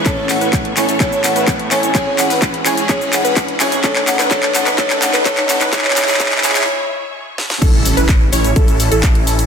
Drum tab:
CC |--------------------------------|--------------------------------|--------------------------------|--------------------------------|
HH |x---o-x-x-x-o-x-x---o-x-x-x-o-x-|x---o-o-x-x-o-x-x---o-x-x-x-o-x-|x---o-x-x-x-o-x-x---o-x-x-x-o-x-|x---o-o-x-x-o-x-----------------|
SH |x---x-x-x---x-x-x-x-x-x-x---x-x-|x---x-x-x---x-x-x-x-x-x-x---x-x-|x---x-x-x---x-x-x-x-x-x-x---x-x-|x---x-x-x---x-x-----------------|
CP |x---x---x---x---x---x---x---x---|x---x---x---x---x---x---x---x---|x-x-x-x-x-x-x-x-x-x-x-x-x-x-x-x-|xxxxxxxxxxxxxxxx----------------|
SD |--------------------------------|--------------------------------|--------------------------------|----------------------------o-o-|
BD |o-------o-------o-------o-------|o-------o-------o-------o-------|o-------o-------o-------o-------|o-------o-----------------------|

CC |x-------------------------------|
HH |x---o-x-x---o-x-x-x-o-x-x-x-o-x-|
SH |x---x-x-x---x-x-x-x-x-x-x---x-x-|
CP |--------x---------------x-------|
SD |--------------------------------|
BD |o-------o-------o-------o-------|